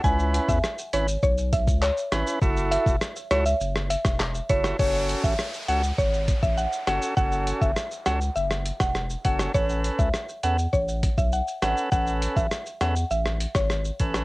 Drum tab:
CC |----------------|----------------|x---------------|----------------|
HH |--x---x---x---x-|--x---x---x---x-|--x---x---x---x-|--x---x---x---x-|
SH |xxxxxxxxxxxxxxxx|xxxxxxxxxxxxxxxx|xxxxxxxxxxxxxxxx|xxxxxxxxxxxxxxxx|
CP |------------x---|------------x---|----------------|----------------|
SD |----r---------r-|----r-r--r-rr--r|----r---------r-|----r-r--r-rr--r|
BD |o--o----o-oo----|o--o-------o--o-|o--o----o-oo----|o--o-------o--o-|

CC |----------------|----------------|
HH |--x---x---x---x-|--x---x---x---x-|
SH |xxxxxxxxxxxxxxxx|xxxxxxxxxxxxxxxx|
CP |----------------|----------------|
SD |----r---------r-|----r-r--r-rr--r|
BD |o--o----o-oo----|o--o-------o--o-|